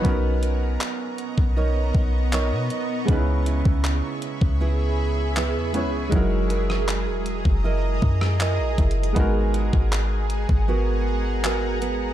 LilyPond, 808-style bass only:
\new Staff \with { instrumentName = "808-style bass" } { \clef bass \time 4/4 \key gis \minor \tempo 4 = 79 b,,4 r8. b,,8. b,,8. b,16 r8 | cis,8. cis,8 r8 cis,4. e,16. cis,16. | fis,,4~ fis,,16 e,,8 fis,,8. fis,8. ais,,16 fis,,8 | gis,,8. gis,,4 gis,,2~ gis,,16 | }